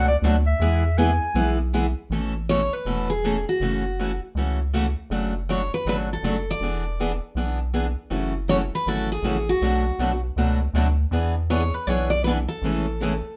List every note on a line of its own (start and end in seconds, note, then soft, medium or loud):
0.00 0.17 C#2 medium
0.08 0.17 D5 loud
0.22 0.54 D2 medium
0.22 0.35 B2 medium
0.22 0.35 F#3 medium
0.22 0.35 A3 medium
0.22 0.35 D4 loud
0.22 0.35 F#4 loud
0.22 0.35 B4 loud
0.47 0.99 E5 medium
0.59 1.20 E2 medium
0.59 0.82 E3 medium
0.59 0.82 G#3 medium
0.59 0.82 B3 medium
0.59 0.82 E4 medium
0.59 0.83 G#4 medium
0.98 1.09 E3 medium
0.98 1.09 G#3 medium
0.98 1.09 B3 medium
0.98 1.10 E4 medium
0.98 1.10 G#4 medium
0.98 1.59 G#5 medium
1.34 1.95 B1 medium
1.34 1.57 E3 medium
1.34 1.57 G#3 medium
1.34 1.57 B3 medium
1.34 1.57 E4 medium
1.34 1.57 G#4 medium
1.74 1.85 E3 medium
1.74 1.85 G#3 medium
1.74 1.85 B3 medium
1.74 1.85 E4 medium
1.74 1.85 G#4 loud
2.10 2.70 A1 medium
2.10 2.33 B2 medium
2.10 2.33 E3 medium
2.10 2.33 A3 medium
2.10 2.33 C#4 medium
2.10 2.33 A4 medium
2.49 2.60 B2 medium
2.49 2.60 E3 medium
2.49 2.60 A3 medium
2.49 2.60 C#4 medium
2.49 2.60 A4 medium
2.49 2.73 C#5 medium
2.73 3.11 B4 medium
2.85 3.45 E1 medium
2.85 3.07 B2 medium
2.85 3.07 E3 medium
2.85 3.08 A3 medium
2.85 3.08 C#4 medium
2.85 3.08 A4 medium
3.10 3.44 G#4 medium
3.24 3.35 B2 medium
3.24 3.35 E3 medium
3.24 3.35 A3 medium
3.24 3.35 C#4 medium
3.24 3.36 A4 medium
3.49 4.19 F#4 medium
3.60 4.20 F#1 medium
3.60 3.83 C#3 medium
3.60 3.83 E3 medium
3.60 3.83 A3 medium
3.60 3.83 C#4 medium
3.60 3.83 F#4 medium
3.99 4.10 C#3 medium
3.99 4.10 E3 medium
3.99 4.10 A3 medium
3.99 4.11 C#4 medium
3.99 4.11 F#4 medium
4.35 4.95 C#2 medium
4.35 4.58 C#3 medium
4.35 4.58 E3 medium
4.35 4.58 A3 medium
4.35 4.58 C#4 medium
4.35 4.58 F#4 medium
4.74 4.85 C#3 medium
4.74 4.85 E3 medium
4.74 4.85 A3 medium
4.74 4.85 C#4 medium
4.74 4.85 F#4 loud
5.10 5.70 F#1 medium
5.10 5.32 C#3 medium
5.10 5.33 F#3 medium
5.10 5.33 A3 medium
5.10 5.33 D4 medium
5.10 5.33 F#4 medium
5.49 5.60 C#3 medium
5.49 5.60 F#3 medium
5.49 5.60 A3 medium
5.49 5.60 D4 medium
5.49 5.61 F#4 medium
5.49 5.74 C#5 medium
5.74 5.86 B4 medium
5.85 6.18 G#1 medium
5.85 6.08 C#3 medium
5.85 6.08 F#3 medium
5.85 6.08 A3 medium
5.85 6.08 D4 medium
5.85 6.08 F#4 medium
5.85 5.95 B4 medium
6.13 6.50 A4 medium
6.23 6.55 F#1 medium
6.23 6.35 C#3 medium
6.23 6.35 F#3 medium
6.23 6.35 A3 medium
6.23 6.35 D4 medium
6.23 6.35 F#4 medium
6.51 7.20 D5 medium
6.60 7.21 E1 medium
6.60 6.83 E3 medium
6.60 6.83 B3 medium
6.60 6.83 D4 medium
6.60 6.83 G#4 medium
7.00 7.11 E3 medium
7.00 7.11 B3 medium
7.00 7.11 D4 medium
7.00 7.11 G#4 medium
7.35 7.96 B1 medium
7.35 7.58 E3 medium
7.35 7.58 B3 medium
7.35 7.58 D4 medium
7.35 7.58 G#4 medium
7.74 7.85 E3 medium
7.74 7.85 B3 medium
7.74 7.85 D4 medium
7.74 7.85 G#4 medium
8.10 8.71 F#1 medium
8.10 8.32 C#3 medium
8.10 8.32 E3 medium
8.10 8.33 F#3 medium
8.10 8.33 A3 medium
8.10 8.33 C#4 medium
8.10 8.34 E4 medium
8.10 8.33 F#4 medium
8.10 8.34 A4 medium
8.48 8.60 C#3 medium
8.48 8.60 E3 medium
8.48 8.60 F#3 medium
8.48 8.61 A3 medium
8.48 8.61 C#4 medium
8.48 8.61 E4 medium
8.48 8.61 F#4 medium
8.48 8.61 A4 medium
8.48 8.56 C#5 medium
8.75 8.88 B4 medium
8.86 9.18 G#1 medium
8.86 9.08 C#3 medium
8.86 9.08 E3 medium
8.86 9.08 F#3 medium
8.86 9.09 A3 medium
8.86 9.09 C#4 medium
8.86 9.09 E4 medium
8.86 9.09 F#4 medium
8.86 9.09 A4 medium
8.86 9.11 A4 medium
9.12 9.50 G#4 medium
9.22 9.55 A1 medium
9.22 9.36 C#3 medium
9.22 9.36 E3 medium
9.22 9.35 F#3 medium
9.22 9.36 A3 medium
9.22 9.36 C#4 medium
9.22 9.36 E4 medium
9.22 9.36 F#4 medium
9.22 9.36 A4 medium
9.49 10.20 F#4 medium
9.61 9.92 B1 medium
9.61 9.83 B2 medium
9.61 9.83 F#3 medium
9.61 9.84 A3 medium
9.61 9.84 D4 medium
9.61 9.84 F#4 medium
9.61 9.84 B4 medium
9.99 10.31 B1 medium
9.99 10.11 B2 medium
9.99 10.11 F#3 medium
9.99 10.11 A3 medium
9.99 10.11 D4 medium
9.99 10.11 F#4 medium
9.99 10.12 B4 medium
10.36 10.68 C#2 medium
10.36 10.59 B2 medium
10.36 10.59 F#3 medium
10.36 10.59 A3 medium
10.36 10.59 D4 medium
10.36 10.59 F#4 medium
10.36 10.59 B4 medium
10.73 11.06 D2 medium
10.73 10.86 B2 medium
10.73 10.86 F#3 medium
10.73 10.86 A3 medium
10.73 10.86 D4 medium
10.73 10.86 F#4 medium
10.73 10.87 B4 medium
11.11 11.72 E2 medium
11.11 11.33 E3 medium
11.11 11.34 B3 medium
11.11 11.34 D4 medium
11.11 11.34 G#4 medium
11.11 11.35 B4 medium
11.50 11.61 E3 medium
11.50 11.61 B3 medium
11.50 11.62 D4 medium
11.50 11.62 G#4 medium
11.50 11.62 B4 medium
11.50 11.74 C#5 medium
11.74 11.87 B4 medium
11.87 12.47 B1 medium
11.87 12.09 E3 medium
11.87 12.09 B3 medium
11.87 12.10 D4 medium
11.87 12.10 G#4 medium
11.87 12.09 B4 medium
11.87 12.10 C#5 loud
12.10 12.23 D5 medium
12.24 12.37 E3 medium
12.24 12.37 B3 medium
12.24 12.37 D4 medium
12.24 12.38 G#4 medium
12.24 12.31 B4 medium
12.24 12.38 B4 medium
12.48 13.37 A4 medium
12.62 13.22 A1 medium
12.62 12.85 C#3 medium
12.62 12.85 E3 medium
12.62 12.85 G#3 medium
12.62 12.85 A3 medium
12.62 12.85 C#4 medium
12.62 12.85 E4 medium
12.62 12.85 G#4 medium
12.62 12.85 A4 medium
13.01 13.12 C#3 medium
13.01 13.12 E3 medium
13.01 13.12 G#3 medium
13.01 13.13 A3 medium
13.01 13.13 C#4 medium
13.01 13.12 E4 medium
13.01 13.13 G#4 medium
13.01 13.12 A4 medium